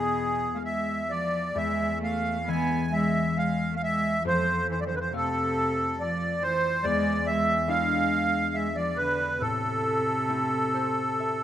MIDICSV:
0, 0, Header, 1, 4, 480
1, 0, Start_track
1, 0, Tempo, 918836
1, 812, Time_signature, 3, 2, 24, 8
1, 1288, Tempo, 891530
1, 2248, Tempo, 855920
1, 4648, Tempo, 878477
1, 5608, Tempo, 921659
1, 6207, End_track
2, 0, Start_track
2, 0, Title_t, "Accordion"
2, 0, Program_c, 0, 21
2, 0, Note_on_c, 0, 68, 82
2, 288, Note_on_c, 0, 77, 57
2, 303, Note_off_c, 0, 68, 0
2, 327, Note_off_c, 0, 77, 0
2, 338, Note_on_c, 0, 76, 76
2, 575, Note_on_c, 0, 74, 82
2, 582, Note_off_c, 0, 76, 0
2, 817, Note_on_c, 0, 76, 88
2, 822, Note_off_c, 0, 74, 0
2, 1038, Note_off_c, 0, 76, 0
2, 1064, Note_on_c, 0, 77, 80
2, 1296, Note_on_c, 0, 80, 82
2, 1301, Note_off_c, 0, 77, 0
2, 1536, Note_on_c, 0, 76, 87
2, 1540, Note_off_c, 0, 80, 0
2, 1778, Note_on_c, 0, 77, 79
2, 1780, Note_off_c, 0, 76, 0
2, 1977, Note_off_c, 0, 77, 0
2, 1985, Note_on_c, 0, 77, 56
2, 2015, Note_off_c, 0, 77, 0
2, 2024, Note_on_c, 0, 76, 94
2, 2239, Note_off_c, 0, 76, 0
2, 2262, Note_on_c, 0, 72, 95
2, 2484, Note_off_c, 0, 72, 0
2, 2510, Note_on_c, 0, 72, 87
2, 2557, Note_off_c, 0, 72, 0
2, 2562, Note_on_c, 0, 74, 56
2, 2580, Note_off_c, 0, 74, 0
2, 2595, Note_on_c, 0, 72, 77
2, 2640, Note_off_c, 0, 72, 0
2, 2648, Note_on_c, 0, 71, 61
2, 2663, Note_off_c, 0, 71, 0
2, 2673, Note_on_c, 0, 72, 80
2, 2740, Note_off_c, 0, 72, 0
2, 2761, Note_on_c, 0, 69, 86
2, 3231, Note_on_c, 0, 74, 77
2, 3245, Note_off_c, 0, 69, 0
2, 3469, Note_on_c, 0, 72, 94
2, 3471, Note_off_c, 0, 74, 0
2, 3700, Note_on_c, 0, 74, 94
2, 3709, Note_off_c, 0, 72, 0
2, 3941, Note_on_c, 0, 76, 97
2, 3942, Note_off_c, 0, 74, 0
2, 4178, Note_on_c, 0, 77, 94
2, 4179, Note_off_c, 0, 76, 0
2, 4657, Note_on_c, 0, 76, 75
2, 4667, Note_off_c, 0, 77, 0
2, 4771, Note_on_c, 0, 74, 77
2, 4776, Note_off_c, 0, 76, 0
2, 4889, Note_on_c, 0, 71, 83
2, 4893, Note_off_c, 0, 74, 0
2, 5126, Note_on_c, 0, 69, 83
2, 5134, Note_off_c, 0, 71, 0
2, 6207, Note_off_c, 0, 69, 0
2, 6207, End_track
3, 0, Start_track
3, 0, Title_t, "Harp"
3, 0, Program_c, 1, 46
3, 0, Note_on_c, 1, 40, 52
3, 0, Note_on_c, 1, 59, 43
3, 0, Note_on_c, 1, 68, 50
3, 804, Note_off_c, 1, 40, 0
3, 811, Note_on_c, 1, 40, 52
3, 1268, Note_off_c, 1, 68, 0
3, 1294, Note_on_c, 1, 56, 46
3, 1295, Note_off_c, 1, 59, 0
3, 1296, Note_on_c, 1, 52, 49
3, 1297, Note_on_c, 1, 59, 43
3, 2247, Note_on_c, 1, 41, 51
3, 2275, Note_off_c, 1, 40, 0
3, 2275, Note_off_c, 1, 52, 0
3, 2275, Note_off_c, 1, 56, 0
3, 2741, Note_on_c, 1, 57, 51
3, 2745, Note_on_c, 1, 60, 46
3, 2748, Note_on_c, 1, 77, 51
3, 2779, Note_off_c, 1, 59, 0
3, 3681, Note_off_c, 1, 77, 0
3, 3702, Note_on_c, 1, 40, 64
3, 3725, Note_off_c, 1, 41, 0
3, 4167, Note_on_c, 1, 56, 53
3, 4172, Note_on_c, 1, 62, 48
3, 4175, Note_on_c, 1, 64, 58
3, 4201, Note_off_c, 1, 57, 0
3, 4428, Note_off_c, 1, 60, 0
3, 5128, Note_on_c, 1, 45, 54
3, 5154, Note_off_c, 1, 40, 0
3, 5154, Note_off_c, 1, 56, 0
3, 5606, Note_on_c, 1, 57, 48
3, 5611, Note_on_c, 1, 60, 44
3, 5612, Note_off_c, 1, 64, 0
3, 5614, Note_on_c, 1, 64, 57
3, 5709, Note_off_c, 1, 62, 0
3, 5847, Note_on_c, 1, 72, 61
3, 6085, Note_on_c, 1, 76, 55
3, 6207, Note_off_c, 1, 45, 0
3, 6207, Note_off_c, 1, 57, 0
3, 6207, Note_off_c, 1, 60, 0
3, 6207, Note_off_c, 1, 64, 0
3, 6207, Note_off_c, 1, 72, 0
3, 6207, Note_off_c, 1, 76, 0
3, 6207, End_track
4, 0, Start_track
4, 0, Title_t, "Cello"
4, 0, Program_c, 2, 42
4, 0, Note_on_c, 2, 47, 70
4, 265, Note_off_c, 2, 47, 0
4, 286, Note_on_c, 2, 57, 44
4, 323, Note_off_c, 2, 57, 0
4, 331, Note_on_c, 2, 56, 63
4, 554, Note_off_c, 2, 56, 0
4, 570, Note_on_c, 2, 53, 65
4, 795, Note_off_c, 2, 53, 0
4, 812, Note_on_c, 2, 56, 80
4, 1035, Note_off_c, 2, 56, 0
4, 1045, Note_on_c, 2, 57, 66
4, 1267, Note_off_c, 2, 57, 0
4, 1284, Note_on_c, 2, 59, 83
4, 1509, Note_off_c, 2, 59, 0
4, 1530, Note_on_c, 2, 56, 79
4, 1753, Note_off_c, 2, 56, 0
4, 1768, Note_on_c, 2, 56, 66
4, 1957, Note_off_c, 2, 56, 0
4, 1969, Note_on_c, 2, 57, 52
4, 2005, Note_off_c, 2, 57, 0
4, 2009, Note_on_c, 2, 56, 74
4, 2231, Note_off_c, 2, 56, 0
4, 2243, Note_on_c, 2, 53, 79
4, 2474, Note_off_c, 2, 53, 0
4, 2496, Note_on_c, 2, 52, 69
4, 2549, Note_off_c, 2, 52, 0
4, 2557, Note_on_c, 2, 53, 48
4, 2576, Note_off_c, 2, 53, 0
4, 2583, Note_on_c, 2, 52, 66
4, 2634, Note_off_c, 2, 52, 0
4, 2637, Note_on_c, 2, 50, 42
4, 2656, Note_off_c, 2, 50, 0
4, 2660, Note_on_c, 2, 52, 59
4, 2733, Note_off_c, 2, 52, 0
4, 2747, Note_on_c, 2, 48, 77
4, 3201, Note_off_c, 2, 48, 0
4, 3228, Note_on_c, 2, 53, 70
4, 3446, Note_off_c, 2, 53, 0
4, 3474, Note_on_c, 2, 52, 69
4, 3689, Note_off_c, 2, 52, 0
4, 3710, Note_on_c, 2, 56, 89
4, 3924, Note_off_c, 2, 56, 0
4, 3947, Note_on_c, 2, 56, 74
4, 4160, Note_off_c, 2, 56, 0
4, 4175, Note_on_c, 2, 56, 78
4, 4629, Note_off_c, 2, 56, 0
4, 4651, Note_on_c, 2, 56, 74
4, 4761, Note_off_c, 2, 56, 0
4, 4773, Note_on_c, 2, 53, 58
4, 4882, Note_off_c, 2, 53, 0
4, 4899, Note_on_c, 2, 50, 62
4, 5116, Note_off_c, 2, 50, 0
4, 5132, Note_on_c, 2, 48, 73
4, 6207, Note_off_c, 2, 48, 0
4, 6207, End_track
0, 0, End_of_file